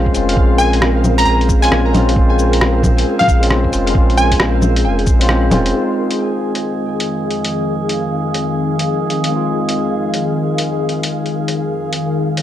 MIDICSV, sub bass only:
0, 0, Header, 1, 2, 480
1, 0, Start_track
1, 0, Tempo, 447761
1, 393, Time_signature, 4, 2, 24, 8
1, 13317, End_track
2, 0, Start_track
2, 0, Title_t, "Sub bass"
2, 0, Program_c, 0, 38
2, 0, Note_on_c, 0, 34, 101
2, 143, Note_off_c, 0, 34, 0
2, 149, Note_on_c, 0, 29, 101
2, 377, Note_off_c, 0, 29, 0
2, 392, Note_on_c, 0, 34, 98
2, 1342, Note_off_c, 0, 34, 0
2, 1353, Note_on_c, 0, 34, 98
2, 1822, Note_off_c, 0, 34, 0
2, 1835, Note_on_c, 0, 34, 103
2, 2303, Note_off_c, 0, 34, 0
2, 2317, Note_on_c, 0, 34, 102
2, 3264, Note_off_c, 0, 34, 0
2, 3515, Note_on_c, 0, 34, 98
2, 3983, Note_off_c, 0, 34, 0
2, 3989, Note_on_c, 0, 29, 100
2, 4217, Note_off_c, 0, 29, 0
2, 4234, Note_on_c, 0, 34, 103
2, 5194, Note_on_c, 0, 29, 84
2, 5210, Note_off_c, 0, 34, 0
2, 5420, Note_off_c, 0, 29, 0
2, 5430, Note_on_c, 0, 34, 97
2, 5901, Note_off_c, 0, 34, 0
2, 5916, Note_on_c, 0, 29, 96
2, 6141, Note_off_c, 0, 29, 0
2, 13317, End_track
0, 0, End_of_file